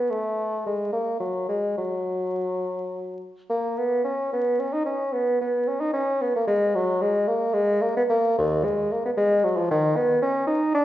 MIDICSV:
0, 0, Header, 1, 2, 480
1, 0, Start_track
1, 0, Key_signature, 6, "major"
1, 0, Tempo, 553506
1, 78, Time_signature, 6, 3, 24, 8
1, 1041, Tempo, 575264
1, 2961, Tempo, 546946
1, 3921, Tempo, 539084
1, 7761, Tempo, 523560
1, 9539, End_track
2, 0, Start_track
2, 0, Title_t, "Bassoon"
2, 0, Program_c, 0, 70
2, 0, Note_on_c, 0, 59, 72
2, 88, Note_on_c, 0, 57, 76
2, 101, Note_off_c, 0, 59, 0
2, 558, Note_off_c, 0, 57, 0
2, 575, Note_on_c, 0, 56, 58
2, 797, Note_off_c, 0, 56, 0
2, 802, Note_on_c, 0, 58, 71
2, 1033, Note_off_c, 0, 58, 0
2, 1039, Note_on_c, 0, 54, 60
2, 1272, Note_off_c, 0, 54, 0
2, 1278, Note_on_c, 0, 56, 65
2, 1516, Note_off_c, 0, 56, 0
2, 1521, Note_on_c, 0, 54, 69
2, 2701, Note_off_c, 0, 54, 0
2, 2959, Note_on_c, 0, 58, 77
2, 3203, Note_on_c, 0, 59, 73
2, 3216, Note_off_c, 0, 58, 0
2, 3430, Note_off_c, 0, 59, 0
2, 3435, Note_on_c, 0, 61, 68
2, 3673, Note_off_c, 0, 61, 0
2, 3688, Note_on_c, 0, 59, 75
2, 3922, Note_on_c, 0, 61, 73
2, 3935, Note_off_c, 0, 59, 0
2, 4041, Note_on_c, 0, 63, 78
2, 4054, Note_off_c, 0, 61, 0
2, 4146, Note_off_c, 0, 63, 0
2, 4152, Note_on_c, 0, 61, 78
2, 4395, Note_on_c, 0, 59, 92
2, 4408, Note_off_c, 0, 61, 0
2, 4635, Note_off_c, 0, 59, 0
2, 4646, Note_on_c, 0, 59, 67
2, 4882, Note_on_c, 0, 61, 64
2, 4896, Note_off_c, 0, 59, 0
2, 4999, Note_on_c, 0, 63, 71
2, 5012, Note_off_c, 0, 61, 0
2, 5108, Note_off_c, 0, 63, 0
2, 5114, Note_on_c, 0, 61, 84
2, 5361, Note_on_c, 0, 59, 76
2, 5375, Note_off_c, 0, 61, 0
2, 5479, Note_off_c, 0, 59, 0
2, 5492, Note_on_c, 0, 58, 76
2, 5588, Note_off_c, 0, 58, 0
2, 5593, Note_on_c, 0, 56, 84
2, 5840, Note_on_c, 0, 54, 89
2, 5854, Note_off_c, 0, 56, 0
2, 6075, Note_on_c, 0, 56, 82
2, 6088, Note_off_c, 0, 54, 0
2, 6308, Note_on_c, 0, 58, 84
2, 6322, Note_off_c, 0, 56, 0
2, 6542, Note_on_c, 0, 56, 91
2, 6555, Note_off_c, 0, 58, 0
2, 6791, Note_on_c, 0, 58, 81
2, 6804, Note_off_c, 0, 56, 0
2, 6910, Note_off_c, 0, 58, 0
2, 6926, Note_on_c, 0, 59, 90
2, 6978, Note_off_c, 0, 59, 0
2, 7039, Note_on_c, 0, 58, 94
2, 7279, Note_off_c, 0, 58, 0
2, 7293, Note_on_c, 0, 39, 94
2, 7523, Note_on_c, 0, 56, 84
2, 7536, Note_off_c, 0, 39, 0
2, 7772, Note_on_c, 0, 58, 70
2, 7786, Note_off_c, 0, 56, 0
2, 7886, Note_off_c, 0, 58, 0
2, 7895, Note_on_c, 0, 59, 78
2, 7946, Note_off_c, 0, 59, 0
2, 8001, Note_on_c, 0, 56, 94
2, 8248, Note_on_c, 0, 54, 81
2, 8261, Note_off_c, 0, 56, 0
2, 8365, Note_on_c, 0, 53, 87
2, 8379, Note_off_c, 0, 54, 0
2, 8483, Note_off_c, 0, 53, 0
2, 8497, Note_on_c, 0, 51, 97
2, 8726, Note_on_c, 0, 59, 94
2, 8740, Note_off_c, 0, 51, 0
2, 8956, Note_off_c, 0, 59, 0
2, 8961, Note_on_c, 0, 61, 92
2, 9188, Note_off_c, 0, 61, 0
2, 9194, Note_on_c, 0, 63, 80
2, 9431, Note_off_c, 0, 63, 0
2, 9445, Note_on_c, 0, 62, 91
2, 9539, Note_off_c, 0, 62, 0
2, 9539, End_track
0, 0, End_of_file